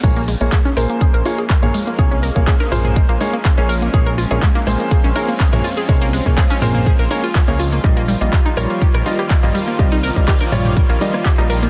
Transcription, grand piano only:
\new Staff \with { instrumentName = "Grand piano" } { \time 4/4 \key bes \dorian \tempo 4 = 123 <bes aes' des''>16 r8 <bes aes' des''>16 r8 <bes aes' c''>4 <bes aes' des''>16 r8 <bes aes' des''>16 r8 | <bes aes' des''>16 r8 <bes aes' des''>16 r8 <bes aes' c''>4 <bes aes' des''>16 r8 <bes aes' des''>16 r8 | <bes aes' des''>16 r8 <bes aes' des''>16 r8 <bes aes' c''>4 <bes aes' des''>16 r8 <bes aes' des''>16 r8 | <bes aes' des''>16 r8 <bes aes' des''>16 r8 <bes aes' c''>4 <bes aes' des''>16 r8 <bes aes' des''>16 r8 |
<g f' ees''>16 r8 <g f' ees''>16 r8 <g f' des''>4 <g f' ees''>16 r8 <g f' ees''>16 r8 | <g f' ees''>16 r8 <g f' ees''>16 r8 <g f' des''>4 <g f' ees''>16 r8 <g f' ees''>16 r8 | }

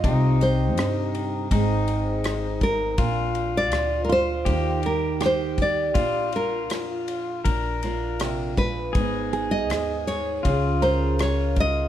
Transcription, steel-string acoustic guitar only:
\new Staff \with { instrumentName = "Steel-string acoustic guitar" } { \time 4/4 \key bes \mixolydian \tempo 4 = 80 << { <c' ees' g'>2 <c' ees' aes'>2 | <d' f'>2 <bes ees' g'>2 | <d' f'>2 d'8 <d' f'>4. | <ces' ees'>2 <des' f' aes'>2 | } \\ { c2 aes,2 | bes,2 ees2 | bes,2. c8 bes,8 | aes,2 des2 | } >> }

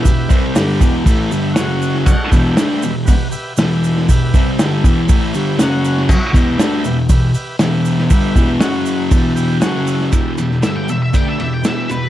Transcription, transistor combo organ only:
\new Staff \with { instrumentName = "Transistor combo organ" } { \time 4/4 \key e \minor \tempo 4 = 119 << { r1 | r1 | r1 | r1 |
r4. b''8 a''8 g''8 fis''8 e''8 | r1 | } \\ { <g' b' e''>4 <g' b' d''>4 <g' b' e''>8 <g' b' e''>8 <fis' cis'' fis''>4 | <fis' cis'' fis''>8 <g' b' e''>4~ <g' b' e''>16 r16 <g' b' fis''>8 <g' b' e''>8 <g' b' e''>4 | <g' b' e''>4 <g' b' e''>4 <g' b' e''>8 <g' b' e''>8 <fis' cis'' fis''>4 | <fis' cis'' e''>8 <g' b' e''>4~ <g' b' e''>16 r16 <g' b' e''>8 <g' b' e''>8 <g' b' e''>4 |
<g' b' e''>4 <fis' cis'' fis''>4 <g' b' e''>8 <g' b' e''>8 <fis' cis''>4 | <g' b' e''>8 <g' b' e''>8 <g' b' e''>4 <g' b' d''>4 <g' b' e''>4 | } >> }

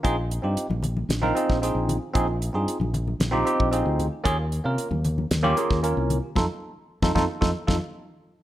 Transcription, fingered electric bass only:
\new Staff \with { instrumentName = "Fingered electric bass" } { \clef bass \time 4/4 \key ees \major \tempo 4 = 114 bes,,8. g,16 r16 bes,,8. bes,,8 r16 bes,,8 bes,,8 r16 | bes,,8. g,16 r16 bes,,8. bes,,8 r16 bes,,8 d,8 r16 | ees,8. c16 r16 ees,8. ees,8 r16 ees,8 c,8 r16 | f,16 r4 f,16 f,16 r16 f,16 r16 f,16 r4 r16 | }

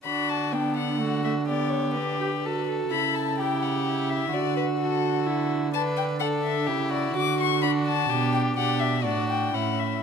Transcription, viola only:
\new Staff \with { instrumentName = "Viola" } { \time 3/4 \key d \major \tempo 4 = 126 d'4 b4 a8 a8 | b4 d'8 g'8 fis'4 | e'4 e'4 e'4 | fis'4 fis'4 e'4 |
d'4 d'4 e'4 | fis'4 d'4 d'4 | d'4 d'4 cis'4 | }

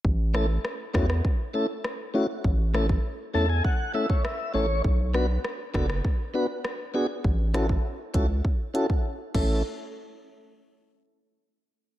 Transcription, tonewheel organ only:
\new Staff \with { instrumentName = "Tonewheel organ" } { \time 4/4 \key a \major \tempo 4 = 100 << { r1 | r4. a''16 gis''16 fis''8 e''16 cis''16 e''8 cis''8 | r1 | r1 |
r1 | } \\ { r8 <a cis' e' a'>8 r8 <a cis' e' fis'>8 r8 <a cis' e' a'>8 r8 <a cis' e' fis'>8 | r8 <a cis' e' a'>8 r8 <a cis' e' a'>8 r8 <a cis' e' a'>8 r8 <a cis' e' a'>8 | r8 <b d' fis' b'>8 r8 <b d' fis' a'>8 r8 <b d' fis' b'>8 r8 <b d' fis' gis'>8 | r8 <cis' e' fis' a'>8 r8 <cis' e' fis' a'>8 r8 <cis' e' fis' a'>8 r8 <a cis' e' a'>8 |
r1 | } >> }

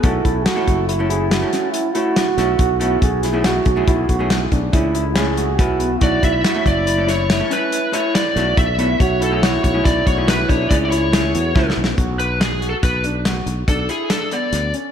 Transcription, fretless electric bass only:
\new Staff \with { instrumentName = "Fretless electric bass" } { \clef bass \time 7/4 \key b \dorian \tempo 4 = 141 b,,8 b,,8 r8 fis,,2 r2 b,,8 b,,4 | b,,4. b,,8 b,,8 b,,4 b,,8 cis,2 b,,4 | b,,8 b,,8 r8 fis,,2 r2 b,,8 b,,4 | b,,4. b,,8 b,,8 b,,4 b,,8 cis,4. e,8 cis,8 b,,8 |
b,,2 b,,4. b,,8 b,,8 r4. d,8 r8 | }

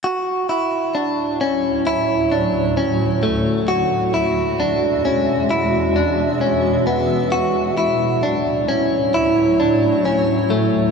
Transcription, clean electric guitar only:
\new Staff \with { instrumentName = "Clean electric guitar" } { \time 4/4 \key d \lydian \tempo 4 = 66 fis'8 e'8 d'8 cis'8 e'8 d'8 cis'8 a8 | fis'8 e'8 d'8 cis'8 e'8 d'8 cis'8 b8 | fis'8 e'8 d'8 cis'8 e'8 d'8 cis'8 a8 | }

